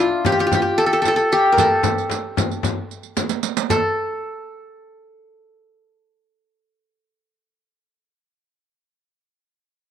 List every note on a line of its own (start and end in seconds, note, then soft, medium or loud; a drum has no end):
0.00 0.97 D4 medium
0.00 1.33 F4 medium
0.25 0.32 G4 medium
0.25 riq medium
0.25 frame drum medium
0.32 0.40 G4 medium
0.39 0.46 G4 medium
0.39 riq soft
0.47 0.54 G4 medium
0.52 0.61 G4 medium
0.52 riq medium
0.52 frame drum medium
0.62 1.32 G4 medium
0.78 0.86 A4 loud
0.78 riq soft
0.86 0.93 A4 medium
0.93 1.01 A4 medium
0.93 riq soft
1.02 1.08 A4 medium
1.02 riq medium
1.02 frame drum medium
1.08 1.16 A4 medium
1.16 1.58 A4 medium
1.16 riq soft
1.32 2.58 G4 medium
1.32 riq soft
1.52 1.65 A#4 medium
1.57 3.14 A4 medium
1.57 riq medium
1.57 frame drum medium
1.83 riq medium
1.83 frame drum medium
1.98 riq soft
2.10 riq medium
2.10 frame drum medium
2.37 riq medium
2.37 frame drum medium
2.51 riq soft
2.63 riq medium
2.63 frame drum medium
2.91 riq soft
3.03 riq soft
3.17 riq medium
3.17 frame drum medium
3.29 riq medium
3.43 riq medium
3.57 riq medium
3.70 8.43 A4 medium
3.70 riq medium
3.70 frame drum medium